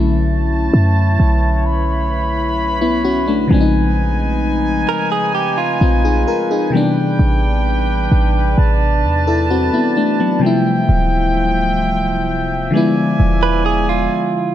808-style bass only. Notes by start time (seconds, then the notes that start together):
Already playing: B1
0.74 F#2
1.20 B1
3.51 A#1
5.81 A#1
7.19 A1
8.12 A1
8.58 A1
9.04 E2
10.89 D1
13.20 E1